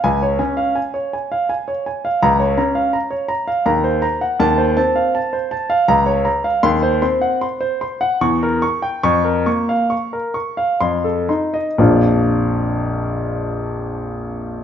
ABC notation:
X:1
M:3/4
L:1/16
Q:1/4=78
K:Db
V:1 name="Grand piano"
a d a f a d a f a d a f | [K:Bbm] b d b f b d b f b c b g | =a c a f a c a f b d b f | c' c c' g c' c c' g ^c' B c' =g |
d' B d' f d' B d' f c' =A c' e | [B,,,F,,F,B,=DF]12 |]
V:2 name="Grand piano" clef=bass
D,,2 D2 z8 | [K:Bbm] D,,2 D2 z4 E,,2 z2 | E,,2 C2 z4 D,,2 z2 | E,,2 C2 z4 =E,,2 z2 |
F,,2 B,2 z4 F,,2 E2 | z12 |]